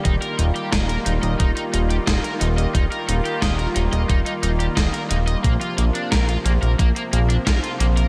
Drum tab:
HH |xxxxxxxxxxxxxxxx|xxxxxxxxxxxxxxxx|xxxxxxxxxxxxxxxx|
SD |----o-------o---|----o-------o---|----o-------o---|
BD |o---o---o---o---|o---o---o---o---|o---o---o---o---|